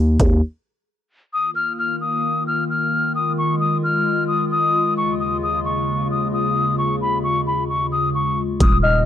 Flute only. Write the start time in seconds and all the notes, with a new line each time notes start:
1.33 D#6
1.55 F6
1.79 F6
2.01 D#6
2.47 F6
2.70 F6
3.15 D#6
3.38 C#6
3.60 D#6
3.84 F6
4.28 D#6
4.51 D#6
4.97 C#6
5.20 D#6
5.43 D#6
5.65 C#6
6.11 D#6
6.33 D#6
6.78 C#6
7.01 B5
7.24 C#6
7.47 B5
7.69 C#6
7.92 D#6
8.15 C#6
8.61 D#6
8.83 F6